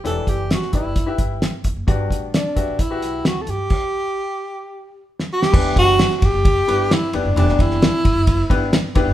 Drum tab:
CC |----------------|----------------|x---------------|x---------------|
RD |----------------|----------------|----------------|--x-x-x-x-x-x-x-|
HH |x-x-x-x-x-x-x-x-|x-x-x-x-x-x-x-x-|----------------|----------------|
SD |----oo------o---|----o-------o---|-------------o-o|----oo------o---|
BD |--o---o-o-o---o-|o-o---o-o-------|o---------------|o-o---o-o-------|

CC |----------------|
RD |x-x-x-x-x-x-x-x-|
HH |----------------|
SD |-o-oo-------o---|
BD |--o---o-o-o---o-|